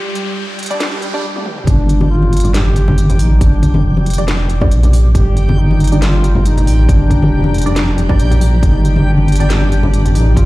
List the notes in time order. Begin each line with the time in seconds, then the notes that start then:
Already playing: G3 G4 D5 G5, riser
0.15 closed hi-hat
0.59 closed hi-hat
0.63 closed hi-hat
0.66 closed hi-hat
0.70 G3 D4 D5
0.80 snare, closed hi-hat, swell
1.02 closed hi-hat
1.14 G3 D4 D5
1.36 high tom
1.46 mid tom
1.58 mid tom
1.67 G1 D4 G4 D5 G5 D6, kick, closed hi-hat
1.89 closed hi-hat
2.01 high conga, low conga
2.11 F4
2.22 high conga
2.33 closed hi-hat
2.37 closed hi-hat
2.40 closed hi-hat
2.44 G3 D4 D5, closed hi-hat
2.54 G4, snare, closed hi-hat
2.66 high conga
2.76 closed hi-hat
2.88 low conga
2.98 closed hi-hat
3.09 closed hi-hat, low conga
3.19 A1 D#4, open hi-hat
3.31 high conga
3.41 G1 D4, kick, closed hi-hat
3.63 kick, closed hi-hat
3.74 high conga, low conga
3.84 F1
3.97 high conga
4.06 closed hi-hat
4.10 closed hi-hat
4.13 closed hi-hat
4.18 G3 D4 D5, closed hi-hat
4.28 snare, closed hi-hat
4.50 closed hi-hat
4.61 G3 D4 D5, kick, low conga
4.71 A#1, closed hi-hat
4.83 closed hi-hat, low conga
4.93 open hi-hat
5.15 G1 G4 A#5, kick, closed hi-hat
5.37 closed hi-hat
5.49 high conga, low conga
5.59 D#4
5.71 high conga
5.80 closed hi-hat
5.84 closed hi-hat
5.87 closed hi-hat
5.92 G3 D4 D5, closed hi-hat
6.02 F4, snare, closed hi-hat
6.15 high conga
6.24 closed hi-hat
6.35 low conga
6.46 D#4, closed hi-hat
6.57 closed hi-hat, low conga
6.67 A1, open hi-hat
6.79 high conga
6.89 G1 D4, kick, closed hi-hat
7.11 kick, closed hi-hat
7.22 high conga, low conga
7.32 F1
7.44 high conga
7.54 closed hi-hat
7.58 closed hi-hat
7.62 closed hi-hat
7.66 G3 D4 D5, closed hi-hat
7.76 D4, snare, closed hi-hat
7.98 closed hi-hat
8.09 G3 D4 D5, kick, low conga
8.19 A#1, closed hi-hat
8.31 closed hi-hat, low conga
8.41 open hi-hat
8.63 G1 D#4 D6, kick, closed hi-hat
8.85 closed hi-hat
8.96 high conga, low conga
9.06 D4
9.17 high conga
9.28 closed hi-hat
9.32 closed hi-hat
9.36 closed hi-hat
9.40 G3 D4 D5, closed hi-hat
9.50 D4, snare, closed hi-hat
9.61 high conga
9.72 closed hi-hat
9.83 low conga
9.94 closed hi-hat
10.05 closed hi-hat, low conga
10.15 A1 D#4, open hi-hat
10.26 high conga
10.37 G1 F4, kick, closed hi-hat